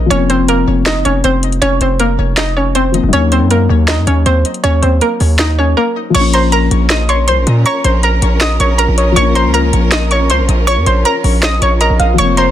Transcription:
0.06 F3
0.10 F1 A#3 C#4 C#5, closed hi-hat
0.16 C4
0.30 C4 C5, closed hi-hat
0.48 A#3 A#4, closed hi-hat
0.67 F1
0.86 D#4 D#5, snare, clap, closed hi-hat
0.96 F#1
1.05 F1 C#4 C#5, closed hi-hat
1.24 F1 C4 C5, closed hi-hat
1.43 closed hi-hat
1.52 closed hi-hat
1.62 F1 C#4 C#5, closed hi-hat
1.81 F1 C4 C5, closed hi-hat
2.00 A#3 A#4, closed hi-hat
2.19 F1
2.37 D#4 D#5, snare, clap, closed hi-hat
2.57 C#4 C#5
2.75 C4 C5, closed hi-hat
2.92 F3 A#3, closed hi-hat
2.97 C4
3.03 F1
3.08 F#3
3.13 D#2 A#3 C#4 C#5, closed hi-hat
3.32 C4 C5, closed hi-hat
3.41 F#2
3.51 A#3 A#4, closed hi-hat
3.69 D#2
3.88 D#4 D#5, snare, clap, closed hi-hat
3.98 F#2
4.07 D#2 C#4 C#5, closed hi-hat
4.26 D#2 C4 C5, closed hi-hat
4.45 closed hi-hat
4.54 closed hi-hat
4.64 D#2 C#4 C#5, closed hi-hat
4.82 D#2 C4 C5, closed hi-hat
5.01 A#3 A#4, closed hi-hat
5.20 D#2, open hi-hat
5.39 D#4 D#5, snare, clap, closed hi-hat
5.59 C#4 C#5
5.77 A#3 A#4
6.10 F3
6.15 A#1 A#3 C#4 F4 A#4 C#5 C#6, closed hi-hat, crash
6.20 C#4
6.33 C5 A#5 C6, closed hi-hat
6.52 A#4 A#5, closed hi-hat
6.71 A#1, closed hi-hat
6.90 D#5 D#6, snare, clap, closed hi-hat
7.09 C#5 C6 C#6, closed hi-hat
7.28 C2 C5 C6, closed hi-hat
7.37 A#1
7.47 A#2, closed hi-hat
7.66 C#5 A#5 C#6, closed hi-hat
7.84 A#1 C5 C6, closed hi-hat
8.03 A#4 A#5, closed hi-hat
8.22 A#1, closed hi-hat
8.41 D#5 D#6, snare, clap, closed hi-hat
8.60 A#1 C#5 C#6, closed hi-hat
8.78 A#4 A#5, closed hi-hat
8.88 A#1
8.98 C#5, closed hi-hat
9.12 F3
9.16 A#1 A#3 C#5 C#6, closed hi-hat
9.21 C#4
9.35 C5 A#5 C6, closed hi-hat
9.45 C#2
9.54 A#4 A#5, closed hi-hat
9.73 A#1, closed hi-hat
9.92 D#5 D#6, snare, clap, closed hi-hat
10.11 C#5 C#6, closed hi-hat
10.30 C#2 C5 C6, closed hi-hat
10.39 A#1
10.49 A#1, closed hi-hat
10.67 C#5 C#6, closed hi-hat
10.77 F2
10.86 A#1 C5 C6, closed hi-hat
11.05 A#4 A#5, closed hi-hat
11.24 A#1, open hi-hat
11.43 D#5 D#6, cross-stick, snare, clap, closed hi-hat
11.62 A#1 C#5 C#6, closed hi-hat
11.81 A#4 D#5 A#5, closed hi-hat
11.90 A#1
11.99 A#1 F5, closed hi-hat
12.14 F3
12.18 F1 F3 A#3 A#4 C5 C#5 C#6, closed hi-hat
12.23 C4
12.37 C5 A#5 C6, closed hi-hat

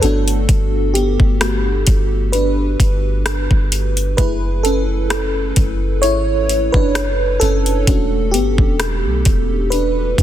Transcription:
0.01 G1 A3 B3 D4 F#4 A4, closed hi-hat
0.28 closed hi-hat
0.49 G1, kick, closed hi-hat
0.94 B3 G4, closed hi-hat
1.20 G1, kick
1.41 A3 B3 F#4, cross-stick, closed hi-hat
1.87 G1, kick, closed hi-hat
2.32 D4 B4, closed hi-hat
2.80 G1, kick, closed hi-hat
3.26 cross-stick, closed hi-hat
3.51 G1, kick
3.72 closed hi-hat
3.97 closed hi-hat
4.17 F#1 A3 E4 G#4 B4, kick, closed hi-hat
4.63 C#4 A4, closed hi-hat
5.10 cross-stick, closed hi-hat
5.56 F#1, kick, closed hi-hat
6.02 G#1 E4 C#5, closed hi-hat
6.49 closed hi-hat
6.72 F#1 D4 B4, kick
6.95 cross-stick, closed hi-hat
7.40 F#1 C#4 A4, closed hi-hat
7.66 closed hi-hat
7.87 E1 A3 C#4 D4 F#4, kick, closed hi-hat
8.31 G1 B3 G4, closed hi-hat
8.58 E1, kick
8.80 cross-stick, closed hi-hat
9.05 B1
9.25 E1, kick, closed hi-hat
9.70 D4 B4, closed hi-hat
10.18 E2, kick, closed hi-hat

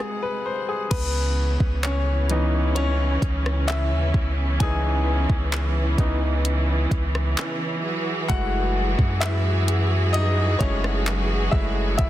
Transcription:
Already playing: C3 G#3 F#5
0.00 G#4
0.22 B4
0.46 C5
0.69 G#4
0.91 C#2 C#3 E3 B3 C#4 B4, kick, closed hi-hat, crash
1.60 C#2, kick
1.83 C#4 C#5, clap, closed hi-hat
2.30 E3 B3 D#4, closed hi-hat
2.75 C#4 C#5, closed hi-hat
3.22 C#2, kick, closed hi-hat
3.46 cross-stick
3.68 E4 E5, clap, closed hi-hat
3.91 D#2
4.14 C#2, kick
4.60 C#2 E3 B3 D#4 G#4 G#5, kick, closed hi-hat
5.30 C#2, kick
5.52 clap, closed hi-hat
5.98 C#2 E3 B3 D#4, kick, closed hi-hat
6.45 closed hi-hat
6.91 C#2, kick, closed hi-hat
7.15 cross-stick
7.37 clap, closed hi-hat
7.84 F#3 F#4 G#4
8.28 F#1 G#3 A3 E4 F#4 F#5, kick, closed hi-hat
8.99 F#2, kick
9.20 E4 E5, clap, closed hi-hat
9.68 closed hi-hat
10.13 D#4 D#5, closed hi-hat
10.59 F#1 G#3 A3 C#4 E4 C#5, kick, closed hi-hat
10.84 cross-stick
11.06 clap, closed hi-hat
11.51 F#1 G#3 A3 E4 E5, kick
11.98 F#1 E4 E5, kick, closed hi-hat

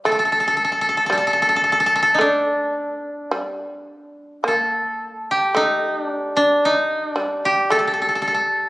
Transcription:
0.05 A3 A4
0.12 A4
0.19 A4
0.25 A4
0.32 A4
0.40 A4
0.48 A4
0.57 A4
0.65 A4
0.72 A4
0.81 A4
0.89 A4
0.97 A4
1.06 G3 A4
1.12 A4
1.18 A4
1.27 A4
1.33 A4
1.42 A4
1.49 A4
1.56 A4
1.64 A4
1.72 A4
1.80 A4
1.86 A4
1.96 A4
2.03 A4
2.14 D#4
2.19 A3 D4
3.31 G3
4.44 A#3 A4
5.31 G4
5.55 A3 D#4
6.01 D4
6.37 D4
6.65 D#4
7.08 D4
7.16 G3
7.45 G4
7.70 A3 A4
7.79 A4
7.87 A4
7.94 A4
8.02 A4
8.09 A4
8.15 A4
8.22 A4
8.28 A4
8.34 A4

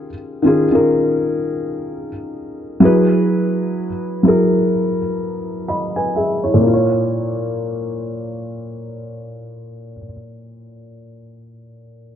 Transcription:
Already playing: D#3 C#4 F4 G#4
0.42 D#3 C#4 F4
0.47 G#4
0.70 D#3 C#4 F4
0.75 A#4
2.80 F#3 E4 G#4
2.85 B4
4.23 F#3 E4 G#4
4.28 A#4
5.68 D#5 B5
5.96 B4 G#5
6.16 G#4 E5
6.43 E4 C#5
6.54 A#2
6.60 A#3
6.67 F4
6.73 C#5

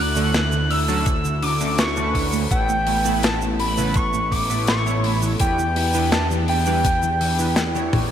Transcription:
Already playing: D2 D3 A3 E4
0.00 F#6
0.16 D3 A3 C#4 D4 F#4 A4, shaker
0.34 snare, closed hi-hat, shaker
0.52 D3, shaker
0.70 D4 E6, open hi-hat
0.88 D3 F#3 A3 C#4 D4 F#4 A4, shaker
1.06 kick, closed hi-hat, shaker
1.24 D3, shaker
1.42 D3 D6, open hi-hat
1.60 D3 A3 C#4 D4 F#4 A4, shaker
1.78 C#6, snare, closed hi-hat, shaker
1.96 D3 A3 C#4 D4 F#4 B4, shaker
2.15 D3, kick, open hi-hat
2.33 A3, shaker
2.51 A1 A2 A3 B3 E4 A4 B4 G5, kick, closed hi-hat, shaker
2.69 A2, shaker
2.87 A3, open hi-hat
3.05 A2 A3 B3 E4 A4 B4, shaker
3.23 A5, snare, closed hi-hat, shaker
3.41 A2, shaker
3.60 A3 B5, open hi-hat
3.77 A2 C#3 A3 B3 E4 A4 B4, shaker
3.94 C#6, kick, closed hi-hat, shaker
4.13 A2, shaker
4.32 A2 D6, kick, open hi-hat
4.50 A2 A3 B3 E4 A4 B4, shaker
4.67 C#6, snare, closed hi-hat, shaker
4.86 A2 A3 B3 E4 A4 C#5, shaker
5.04 A2, open hi-hat
5.22 E3, shaker
5.40 E2 E3 B3 D4 E4 G4 B4 G5, kick, closed hi-hat, shaker
5.58 E3, shaker
5.76 E4, open hi-hat
5.94 E3 B3 D4 E4 G4 B4, shaker
6.12 A5, snare, closed hi-hat, shaker
6.30 E3, shaker
6.48 E4 G5, open hi-hat
6.66 E3 G3 B3 D4 E4 G4 B4, shaker
6.85 kick, closed hi-hat, shaker
7.03 E3, shaker
7.21 E3, open hi-hat
7.39 E3 B3 D4 E4 G4 B4, shaker
7.56 snare, closed hi-hat, shaker
7.75 E3 B3 D4 E4 G4 C#5, shaker
7.93 E3, kick, open hi-hat, high tom

